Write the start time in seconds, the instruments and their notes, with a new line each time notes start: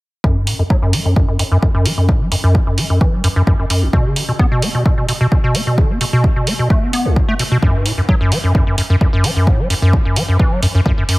0.24 acid bass F#2, kick
0.36 acid bass G2
0.47 acid bass A2, open hi-hat
0.59 acid bass F#2
0.70 acid bass F#3, kick
0.82 acid bass F#2
0.93 acid bass F#3, open hi-hat
1.05 acid bass F#2
1.16 acid bass F#2, kick
1.28 acid bass F#2
1.39 acid bass F#2, open hi-hat
1.52 acid bass F#2
1.62 acid bass F#2, kick
1.75 acid bass F#2
1.86 acid bass F#3, open hi-hat
1.98 acid bass F#2
2.09 acid bass A2, kick
2.21 acid bass F#3
2.32 acid bass F#2, open hi-hat
2.44 acid bass F#2
2.55 acid bass G2, kick
2.67 acid bass F#2
2.78 acid bass F#3, open hi-hat
2.90 acid bass F#2
3.01 acid bass E3, kick
3.13 acid bass F#3
3.24 acid bass F#2, open hi-hat
3.36 acid bass F#2
3.47 acid bass F#2, kick
3.59 acid bass F#2
3.70 acid bass F#2, open hi-hat
3.82 acid bass F#1
3.93 acid bass B2, kick
4.05 acid bass C#3
4.16 acid bass D3, open hi-hat
4.29 acid bass B2
4.39 acid bass B3, kick
4.52 acid bass B2
4.62 acid bass B3, open hi-hat
4.75 acid bass B2
4.86 acid bass B2, kick
4.98 acid bass B2
5.09 acid bass B2, open hi-hat
5.21 acid bass B2
5.32 acid bass B2, kick
5.44 acid bass B2
5.55 acid bass B3, open hi-hat
5.67 acid bass B2
5.78 acid bass D3, kick
5.90 acid bass B3
6.01 acid bass B2, open hi-hat
6.13 acid bass B2
6.24 acid bass C#3, kick
6.36 acid bass B2
6.47 acid bass B3, open hi-hat
6.59 acid bass B2
6.70 acid bass A3, kick
6.82 acid bass B3
6.93 acid bass B3, open hi-hat
7.05 acid bass B1
7.16 acid bass B2, kick
7.28 acid bass A3
7.39 acid bass B2, open hi-hat
7.52 acid bass B2
7.62 acid bass F#2, kick
7.75 acid bass G2
7.85 acid bass A2, open hi-hat
7.98 acid bass F#2
8.09 acid bass F#3, kick
8.21 acid bass F#2
8.32 acid bass F#3, open hi-hat
8.44 acid bass F#2
8.55 kick
8.67 acid bass F#2
8.78 acid bass F#2, open hi-hat
8.90 acid bass F#2
9.01 acid bass F#2, kick
9.13 acid bass F#2
9.24 acid bass F#3, open hi-hat
9.36 acid bass F#2
9.47 acid bass A2, kick
9.59 acid bass F#3
9.70 acid bass F#2, open hi-hat
9.82 acid bass F#2
9.93 acid bass G2, kick
10.05 acid bass F#2
10.16 acid bass F#3, open hi-hat
10.29 acid bass F#2
10.39 acid bass E3, kick
10.52 acid bass F#3
10.62 acid bass F#2, open hi-hat
10.75 acid bass F#2
10.86 acid bass F#2, kick
10.98 acid bass F#2
11.09 acid bass F#2, open hi-hat